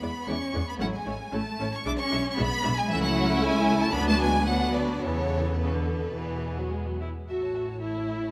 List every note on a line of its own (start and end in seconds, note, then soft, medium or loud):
0.00 0.09 E2 medium
0.00 0.10 G#3 medium
0.00 0.27 B3 medium
0.00 0.10 B3 medium
0.00 0.10 E4 medium
0.00 0.09 D5 medium
0.00 0.28 B5 medium
0.27 0.36 E2 medium
0.27 0.36 G#3 medium
0.27 0.36 B3 medium
0.27 0.67 C#4 medium
0.27 0.36 E4 medium
0.27 0.36 D5 medium
0.27 0.67 C#6 medium
0.53 0.62 E2 medium
0.53 0.62 G#3 medium
0.53 0.62 B3 medium
0.53 0.61 E4 medium
0.53 0.62 D5 medium
0.66 0.79 B3 medium
0.66 0.74 B5 medium
0.79 0.88 A1 medium
0.79 0.93 F#3 medium
0.79 0.88 A3 medium
0.79 0.88 C#4 medium
0.79 0.89 E4 medium
0.79 0.89 C#5 medium
0.79 0.86 F#5 loud
0.93 1.33 G#3 medium
0.93 1.33 G#5 medium
1.06 1.14 A1 medium
1.06 1.15 A3 medium
1.06 1.15 C#4 medium
1.06 1.14 E4 medium
1.06 1.15 C#5 medium
1.32 1.41 A1 medium
1.32 1.71 A3 medium
1.32 1.41 A3 medium
1.32 1.41 C#4 medium
1.32 1.41 E4 medium
1.32 1.40 C#5 medium
1.32 1.73 A5 loud
1.59 1.67 A1 medium
1.59 1.68 A3 medium
1.59 1.68 C#4 medium
1.59 1.68 E4 medium
1.59 1.68 C#5 medium
1.72 1.85 C#4 medium
1.72 1.86 C#6 loud
1.85 1.94 B1 medium
1.85 1.94 G#3 medium
1.85 1.90 D4 loud
1.85 1.93 D4 medium
1.85 1.94 E4 medium
1.85 1.94 E5 medium
1.85 1.92 D6 loud
1.98 2.37 C#4 loud
1.98 2.29 C#6 loud
2.11 2.20 B1 medium
2.11 2.19 G#3 medium
2.11 2.19 D4 medium
2.11 2.20 E4 medium
2.11 2.21 E5 medium
2.31 2.37 C#6 medium
2.37 2.46 B1 loud
2.37 2.46 G#3 medium
2.37 2.76 B3 medium
2.37 2.46 D4 medium
2.37 2.46 E4 medium
2.37 2.46 E5 medium
2.37 2.77 B5 loud
2.64 2.72 B1 medium
2.64 2.72 G#3 medium
2.64 2.72 D4 medium
2.64 2.72 E4 medium
2.64 2.72 E5 medium
2.76 2.89 G#3 loud
2.76 2.90 G#5 loud
2.90 3.90 C#2 loud
2.90 3.03 E3 loud
2.90 3.90 A3 medium
2.90 3.90 C#4 medium
2.90 3.90 E4 loud
2.90 3.90 E5 medium
2.90 3.03 E5 loud
3.02 3.42 F#3 loud
3.02 3.40 F#5 loud
3.41 3.80 G#3 medium
3.41 3.81 G#5 loud
3.81 3.94 A3 loud
3.81 3.94 A5 loud
3.94 5.03 D2 loud
3.94 4.46 F#3 medium
3.94 4.46 B3 medium
3.94 4.08 B3 loud
3.94 4.46 D4 medium
3.94 4.47 B4 medium
3.94 4.07 B5 loud
4.08 4.13 A3 medium
4.08 4.20 A5 loud
4.20 4.47 G#3 loud
4.20 4.46 G#5 loud
4.47 5.02 F#3 medium
4.47 4.74 F#3 medium
4.47 5.01 B3 medium
4.47 5.02 D4 medium
4.47 5.02 B4 medium
4.47 4.75 F#5 loud
4.74 5.02 D3 medium
4.74 5.03 D5 loud
5.02 6.14 E2 medium
5.02 5.59 C#3 medium
5.02 5.59 E3 medium
5.02 5.58 B3 medium
5.02 5.57 B3 medium
5.02 5.58 A4 medium
5.02 5.59 C#5 loud
5.59 7.01 B2 medium
5.59 5.72 C#3 medium
5.59 6.14 B3 medium
5.59 6.15 A4 medium
5.59 7.01 B4 medium
5.73 6.16 D3 medium
6.15 7.06 E2 medium
6.15 6.57 E3 medium
6.15 7.06 B3 medium
6.15 7.08 G#4 medium
6.59 6.73 F#3 medium
6.72 6.86 G#3 medium
6.86 7.00 F#3 medium
7.01 7.09 E4 medium
7.28 8.31 A1 soft
7.28 8.31 A2 medium
7.28 7.81 F#4 medium
7.28 7.41 A4 soft
7.28 7.36 E5 soft
7.28 7.41 E5 soft
7.41 7.55 C#5 soft
7.41 7.55 A5 soft
7.55 7.68 A4 soft
7.55 8.31 C#5 soft
7.55 7.69 E5 soft
7.67 7.82 C#5 soft
7.67 7.82 A5 soft
7.81 8.31 E4 medium
7.81 7.94 A4 soft
7.81 7.94 E5 soft
7.96 8.09 C#5 soft
7.96 8.09 A5 soft
8.09 8.22 A4 soft
8.09 8.22 E5 soft
8.22 8.31 C#5 soft
8.22 8.31 A5 soft